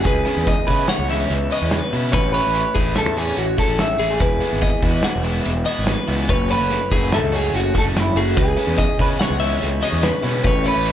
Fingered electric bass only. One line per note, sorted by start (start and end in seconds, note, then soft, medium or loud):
0.05 0.22 C#2 medium
0.37 0.54 E2 medium
0.68 0.85 C#3 medium
0.99 1.24 C#2 loud
1.30 1.47 C#2 medium
1.62 1.79 E2 medium
1.93 2.15 B2 medium
2.14 2.39 A1 loud
2.47 2.63 A1 medium
2.76 3.06 A1 medium
3.06 3.32 E2 medium
3.37 3.55 A1 medium
3.68 3.94 A1 medium
4.00 4.17 A1 medium
4.20 4.38 E1 medium
4.53 4.70 G#1 medium
4.83 5.00 E2 medium
5.16 5.41 E1 medium
5.46 5.63 E1 medium
5.79 5.95 G#1 medium
6.08 6.31 C#2 medium
6.29 6.55 F#1 loud
6.60 6.77 F#1 medium
6.91 7.22 F#1 medium
7.22 7.48 C#2 medium
7.53 7.71 F#1 medium
7.84 8.10 F#1 medium
8.15 8.33 F#1 medium
8.37 8.54 C#2 loud
8.67 8.84 E2 medium
8.99 9.16 C#3 medium
9.30 9.56 C#2 loud
9.63 9.79 C#2 loud
9.92 10.09 E2 medium
10.23 10.46 B2 medium
10.44 10.70 A1 loud
10.76 10.92 A1 medium